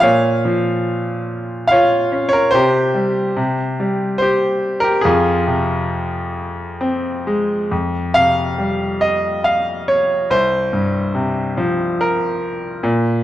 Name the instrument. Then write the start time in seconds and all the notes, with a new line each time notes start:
grand piano
0.00 A#2 C#5 F5
0.45 F3
1.68 F4 F5
1.72 C#5
2.12 C#4
2.29 C#5
2.33 A#4
2.51 C3 C5
2.55 G4
2.95 G3
3.37 C3
3.80 G3
4.18 G4 C5
4.80 G4 A#4
5.01 F2 F4 G#4
5.47 C3
6.81 C4
7.27 G#3
7.71 F2
8.14 C3 F5
8.58 G3
9.01 D#5
9.44 F5
9.88 C#5
10.31 C2 C5
10.73 G2
11.15 C3
11.57 F3
12.01 A#4
12.83 A#2